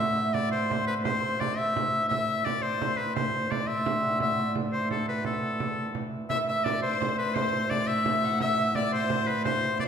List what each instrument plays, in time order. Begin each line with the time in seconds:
Already playing: viola da gamba A2, hammered dulcimer C5 D5 F#5
0.00 hammered dulcimer E5, shawm E5
0.17 hammered dulcimer E5
0.34 shawm D5, hammered dulcimer D5, frame drum
0.51 hammered dulcimer C5, shawm C5
0.69 hammered dulcimer C5, frame drum
0.87 shawm B4
1.04 hammered dulcimer C5, shawm C5, frame drum
1.21 hammered dulcimer C5, frame drum
1.40 shawm D5, frame drum
1.57 shawm E5, hammered dulcimer E5
1.76 frame drum
2.09 viola da gamba A2, shawm E5, hammered dulcimer E5, frame drum
2.45 shawm D5, hammered dulcimer D5, frame drum
2.62 shawm C5, hammered dulcimer C5
2.82 hammered dulcimer C5, frame drum
2.98 shawm B4
3.15 shawm C5, hammered dulcimer C5, frame drum
3.51 hammered dulcimer D5, shawm D5, frame drum
3.66 hammered dulcimer E5, shawm E5
3.86 frame drum
4.00 hammered dulcimer G5
4.04 hammered dulcimer F#5
4.20 shawm E5, hammered dulcimer E5, frame drum
4.39 hammered dulcimer D5
4.55 frame drum
4.72 shawm C5, hammered dulcimer C5
4.91 shawm A4, frame drum
5.08 shawm B4, hammered dulcimer B4
5.24 hammered dulcimer A4, shawm A4, frame drum
5.60 frame drum
5.78 frame drum
5.95 frame drum
6.14 frame drum
6.30 viola da gamba A2, shawm E5, fiddle E5, hammered dulcimer E5, frame drum
6.47 shawm E5, fiddle E5, hammered dulcimer E5
6.64 shawm D5, hammered dulcimer D5, fiddle D5, frame drum
6.82 shawm C5, hammered dulcimer C5, fiddle C5
7.00 hammered dulcimer C5, frame drum
7.19 shawm B4, fiddle B4
7.35 shawm C5, hammered dulcimer C5, fiddle C5, frame drum
7.53 hammered dulcimer C5, fiddle C5
7.70 shawm D5, fiddle D5, frame drum
7.87 shawm E5, hammered dulcimer E5, fiddle E5
8.06 frame drum
8.24 hammered dulcimer F#5, fiddle F#5
8.40 hammered dulcimer E5, shawm E5, fiddle E5, frame drum
8.58 hammered dulcimer E5
8.75 hammered dulcimer D5, shawm D5, fiddle D5, frame drum
8.93 shawm C5, hammered dulcimer C5, fiddle C5
9.10 frame drum
9.27 shawm B4, hammered dulcimer B4, fiddle B4
9.44 shawm C5, fiddle C5, hammered dulcimer C5, frame drum
9.79 shawm D5, fiddle D5, hammered dulcimer D5, frame drum